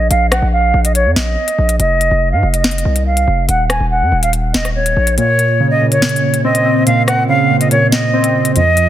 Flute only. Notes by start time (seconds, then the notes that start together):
0.10 F5
0.31 F#5
0.53 F5
0.84 D#5
0.95 C#5
1.16 D#5
1.80 D#5
2.32 F5
2.54 D#5
3.06 F5
3.49 F#5
3.70 G#5
3.91 F#5
4.23 F5
4.54 D#5
4.76 C#5
5.18 C#5
5.71 D#5
5.92 C#5
6.44 D#5
6.86 F5
7.07 F#5
7.29 F5
7.60 D#5
7.71 C#5
7.92 D#5
8.56 D#5